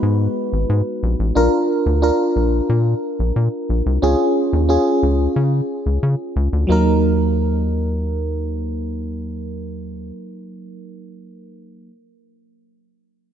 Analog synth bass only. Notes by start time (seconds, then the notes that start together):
0.03 G#2
0.53 G#1
0.69 G#2
1.03 A#1
1.19 A1
1.36 A#1
1.86 D2
2.36 A#1
2.69 A#2
3.19 A#1
3.36 A#2
3.69 A#1
3.86 C2
4.03 C#2
4.53 D#2
5.03 C#2
5.36 C#3
5.86 C#2
6.03 C#3
6.36 C#2
6.53 D2
6.69 D#2